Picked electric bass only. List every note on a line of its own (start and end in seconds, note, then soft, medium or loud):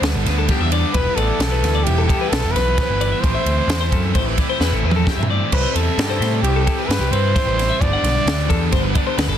0.02 0.13 D2 loud
0.14 0.25 G1 medium
0.25 0.47 D2 medium
0.60 0.81 E2 medium
0.94 1.05 E1 loud
1.17 1.28 A1 medium
1.40 1.61 B1 loud
1.62 1.84 D2 loud
1.87 2.08 E1 loud
2.32 2.43 B1 loud
2.44 2.54 E1 medium
2.56 2.76 B1 loud
2.90 3.11 G1 medium
3.23 3.34 A1 loud
3.46 3.57 D2 medium
3.68 3.90 E2 loud
3.92 4.13 F#2 loud
4.15 4.36 A1 loud
4.60 4.71 E2 medium
4.71 4.82 A1 medium
4.83 5.05 E2 medium
5.17 5.39 G2 medium
5.52 5.63 C2 loud
5.75 5.86 E2 medium
5.98 6.19 G2 loud
6.20 6.42 A2 loud
6.43 6.65 C2 medium
6.89 6.99 G2 loud
7.00 7.10 C2 medium
7.11 7.33 G2 medium
7.45 7.67 A1 medium
7.81 7.91 G1 loud
8.03 8.14 B1 loud
8.26 8.48 D2 loud
8.49 8.71 E2 loud
8.72 8.94 G1 medium
9.18 9.27 D2 loud
9.28 9.38 G1 medium